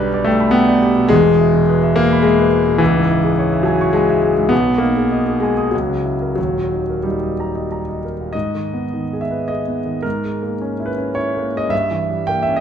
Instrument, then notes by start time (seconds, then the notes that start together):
grand piano
Already playing: B1 B2 G3 D4 G4
0.00 B4
0.14 D5
0.25 A3 G5
0.40 B5
0.51 B3 G5
0.68 D5
0.82 G4
0.96 B2
1.09 E1 E2 G#3
1.25 B2
1.40 E4
1.54 B2
1.69 B4
1.83 E5
1.96 A#3 B4
2.12 B5
2.22 G#3 E5
2.38 B4
2.53 E4
2.68 B2
2.78 C#2 E3
2.95 G#2
3.10 E4
3.24 G#4
3.39 C#5
3.52 E5
3.63 F#3 G#5
3.81 C#6
3.93 G#3 G#5
4.09 E5
4.24 G#4
4.37 G#2
4.49 B1 B3
4.67 B2
4.78 A#3 D#4
4.96 G#4
5.12 D#5
5.26 G#4
5.40 G#3 G#5
5.57 D#6
5.71 C#2 F#3
5.90 C#3
6.05 E4
6.22 A#4
6.35 D#1 D#2 F#3
6.56 A#2
6.72 D#4
6.90 A#4
7.03 G3 D#4
7.23 D#5
7.40 A#5
7.55 D#5
7.72 A#5
7.89 D#5
8.05 A#4
8.21 A#2
8.33 G#2 D#5
8.55 D#3
8.74 B3
8.93 D#3
9.13 G#4
9.21 E5
9.31 B4
9.48 G#4 D#5
9.68 B3
9.86 D#3
10.02 G#2 A#4
10.24 G#3
10.43 A#3
10.62 C#4
10.80 E4
10.86 B4
10.98 C#4
11.15 E4 C#5
11.37 A#3
11.55 G#3 D#5
11.69 G2 E5
11.91 E3
12.10 G3
12.27 A#3 G5
12.43 E5
12.49 C#4
12.56 D#5